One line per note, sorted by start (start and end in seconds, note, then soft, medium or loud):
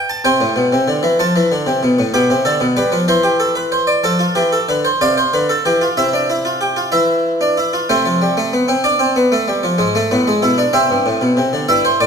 0.00 0.22 B4 medium
0.09 0.25 A5 medium
0.25 0.40 C3 medium
0.25 2.09 C5 medium
0.25 1.16 G5 medium
0.41 0.56 A2 medium
0.56 0.71 B2 medium
0.73 0.88 C3 medium
0.88 1.03 D3 medium
1.03 1.18 E3 medium
1.19 1.35 F3 loud
1.19 2.11 A5 medium
1.36 1.51 E3 medium
1.52 1.66 D3 medium
1.67 1.82 C3 medium
1.83 1.98 B2 medium
1.99 2.13 A2 medium
2.14 2.29 B2 medium
2.14 2.33 G4 medium
2.14 3.06 B5 medium
2.30 2.45 C3 medium
2.45 2.61 D3 medium
2.45 2.65 A4 medium
2.60 2.76 B2 medium
2.77 2.92 G3 medium
2.77 2.96 B4 medium
2.92 3.08 F3 loud
3.08 4.01 E3 medium
3.08 3.24 C5 medium
3.08 4.01 C6 medium
3.23 3.39 G4 medium
3.40 3.55 A4 medium
3.55 3.71 B4 medium
3.72 3.87 C5 medium
3.87 4.03 D5 medium
4.04 4.24 F3 medium
4.04 4.20 A4 medium
4.04 4.98 A5 medium
4.19 4.35 F4 medium
4.35 4.56 E3 medium
4.35 4.52 G4 medium
4.53 4.68 A4 medium
4.69 4.89 D3 medium
4.69 4.84 B4 medium
4.85 5.00 C5 medium
5.01 5.21 C3 medium
5.01 5.17 D5 medium
5.01 5.95 F5 medium
5.18 5.33 C5 medium
5.33 5.53 D3 medium
5.33 5.49 B4 medium
5.49 5.65 A4 medium
5.65 5.86 E3 medium
5.65 5.81 G4 medium
5.81 5.97 F4 medium
5.97 6.90 C3 medium
5.97 6.13 E4 medium
5.97 6.90 E5 medium
6.13 6.29 D4 medium
6.30 6.45 E4 medium
6.45 6.60 F4 medium
6.61 6.76 G4 soft
6.76 6.92 F4 medium
6.92 7.86 E3 medium
6.92 7.39 E4 medium
6.92 7.86 E5 medium
7.41 7.57 D4 medium
7.57 7.73 E4 soft
7.73 7.89 F4 medium
7.89 9.76 C3 medium
7.89 8.05 A3 medium
7.89 8.82 C5 medium
8.05 8.21 F3 medium
8.22 8.37 G3 medium
8.37 8.52 A3 medium
8.53 8.68 B3 medium
8.68 8.84 C4 medium
8.84 9.00 D4 medium
8.84 10.70 D5 medium
8.99 9.15 C4 medium
9.16 9.32 B3 medium
9.32 9.47 A3 medium
9.48 9.63 G3 medium
9.63 9.79 F3 medium
9.78 9.99 G#2 medium
9.78 9.94 G#3 medium
9.95 10.11 A3 medium
10.11 10.31 A2 medium
10.11 10.27 B3 medium
10.27 10.42 G#3 medium
10.42 10.62 B2 medium
10.42 10.58 E4 medium
10.58 10.73 D4 medium
10.73 10.89 C3 medium
10.73 11.65 C4 medium
10.73 11.65 E5 medium
10.90 11.05 G2 medium
11.06 11.21 A2 medium
11.21 11.37 B2 medium
11.37 11.52 C3 medium
11.53 11.68 D3 medium
11.69 11.88 G2 medium
11.69 12.07 E4 medium
11.69 11.84 E5 medium
11.85 12.00 C5 medium
12.00 12.07 A2 medium
12.00 12.07 D5 medium